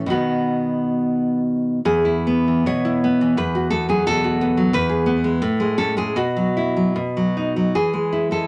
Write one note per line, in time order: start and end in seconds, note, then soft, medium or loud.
0.06 1.79 B2 medium
0.06 1.79 D#3 medium
0.06 1.39 F#4 medium
0.11 1.40 B3 medium
1.85 2.66 E2 medium
1.85 2.65 G#4 loud
2.05 2.66 E4 medium
2.27 3.03 B3 medium
2.48 3.20 E3 medium
2.66 3.37 B2 medium
2.66 3.36 C#5 loud
2.85 3.38 E4 medium
3.04 3.39 B3 medium
3.21 3.39 E3 medium
3.37 4.69 E2 medium
3.37 3.70 B4 loud
3.55 4.23 F#4 medium
3.70 4.40 B3 medium
3.70 3.89 A4 loud
3.89 4.56 F#3 medium
3.89 4.06 G#4 medium
4.07 4.73 B2 medium
4.07 4.71 A4 loud
4.24 4.74 F#4 medium
4.41 4.74 B3 medium
4.57 4.74 F#3 medium
4.73 5.39 E2 medium
4.73 5.74 B4 loud
4.89 5.41 G#4 medium
5.06 5.41 B3 medium
5.24 5.42 G#3 medium
5.42 6.14 A2 loud
5.60 5.96 G#3 medium
5.78 6.16 C#4 medium
5.78 5.97 A4 loud
5.97 6.16 G#3 medium
5.97 6.17 G#4 loud
6.16 6.93 B2 medium
6.16 7.31 F#4 medium
6.37 6.75 F#3 medium
6.57 6.96 E4 medium
6.77 6.96 F#3 medium
6.96 7.72 B2 medium
7.17 7.55 F#3 medium
7.37 7.75 D#4 medium
7.56 7.75 F#3 medium
7.75 8.47 E3 medium
7.75 8.28 G#4 loud
7.93 8.30 G#3 medium
8.12 8.47 E4 medium
8.31 8.47 G#3 medium
8.31 8.47 A4 medium